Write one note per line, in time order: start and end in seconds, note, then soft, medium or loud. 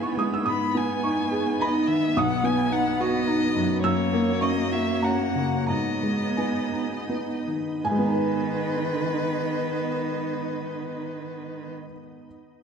0.00 0.43 G#2 medium
0.00 0.49 B3 medium
0.00 2.11 B3 medium
0.00 3.85 B3 medium
0.00 0.48 E4 medium
0.00 0.50 E4 medium
0.00 0.50 G#4 medium
0.00 3.85 B4 medium
0.00 0.17 G#5 medium
0.00 0.49 B5 medium
0.00 0.03 C#6 loud
0.00 0.17 C#6 medium
0.17 0.47 G#3 soft
0.17 0.32 D#6 medium
0.34 0.47 E6 medium
0.46 2.12 G#2 medium
0.46 2.16 D#4 medium
0.46 0.78 B5 medium
0.46 0.99 D#6 medium
0.75 1.20 B3 medium
0.75 1.62 G#5 medium
1.03 1.49 D#4 medium
1.03 1.56 C#6 medium
1.32 1.77 G#4 medium
1.60 2.05 D#4 medium
1.60 1.89 D#5 medium
1.60 2.13 B5 loud
1.88 2.16 D#3 medium
1.88 2.20 E5 medium
2.16 3.81 B1 medium
2.16 3.82 B3 medium
2.16 5.69 F#4 medium
2.16 2.46 F#5 loud
2.16 3.81 D#6 loud
2.44 2.89 B3 medium
2.44 2.74 G#5 loud
2.71 3.16 D#4 medium
2.71 3.02 F#5 loud
3.00 3.45 F#4 medium
3.00 3.82 D#5 loud
3.27 3.73 D#4 medium
3.56 3.83 F#2 medium
3.82 5.65 F#2 medium
3.82 5.72 A#3 medium
3.82 5.70 A#3 medium
3.82 4.43 C#5 medium
3.82 5.70 C#5 medium
3.82 4.38 E6 loud
4.13 4.60 A#3 medium
4.41 4.91 C#4 medium
4.41 4.74 D#5 medium
4.41 4.99 C#6 loud
4.72 5.23 F#4 medium
4.72 5.06 E5 medium
5.02 5.55 C#4 medium
5.02 5.69 F#5 medium
5.02 5.65 A#5 loud
5.35 5.69 C#3 medium
5.67 7.81 G#2 medium
5.67 7.83 B3 medium
5.67 7.59 B3 medium
5.67 7.84 D#4 medium
5.67 7.85 D#5 medium
5.67 7.44 D#5 medium
5.67 6.33 A#5 medium
6.03 6.59 G#3 medium
6.37 6.95 B3 soft
6.37 7.43 G#5 medium
6.72 7.32 D#4 medium
7.09 7.70 B3 medium
7.48 7.85 D#3 soft
7.84 11.72 G#2 medium
7.84 11.71 D#3 medium
7.84 11.72 B3 medium
7.84 11.72 D#4 medium
7.84 11.72 B4 medium
7.84 11.73 D#5 medium
7.84 11.72 G#5 loud
7.92 11.78 G#3 medium
7.99 11.86 B3 medium
8.05 11.92 D#4 medium
8.13 12.00 B4 medium